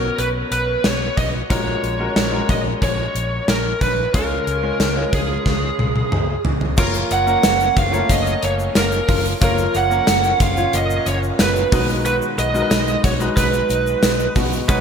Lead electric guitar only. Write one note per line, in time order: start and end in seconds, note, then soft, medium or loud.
0.00 0.19 A#4 medium
0.19 0.28 B4 medium
0.53 0.86 B4 medium
0.86 1.18 C#5 medium
1.18 1.27 D#5 medium
1.51 2.13 C#5 medium
2.17 2.50 C#5 medium
2.50 2.59 D#5 medium
2.84 3.51 C#5 medium
3.50 3.82 A#4 medium
3.82 4.12 B4 medium
4.15 5.14 A#4 medium
5.15 6.42 G#4 medium
6.80 6.88 A#4 loud
7.13 7.78 F#5 loud
7.79 8.12 F5 loud
8.12 8.41 D#5 loud
8.45 8.53 C#5 loud
8.78 9.23 A#4 medium
9.44 9.77 A#4 medium
9.77 10.38 F#5 loud
10.42 10.75 F5 loud
10.75 11.08 D#5 loud
11.09 11.17 C#5 medium
11.41 11.86 B4 medium
12.06 12.15 B4 medium
12.39 13.01 D#5 loud
13.05 13.14 C#5 medium
13.37 14.32 B4 medium
14.70 14.78 B4 loud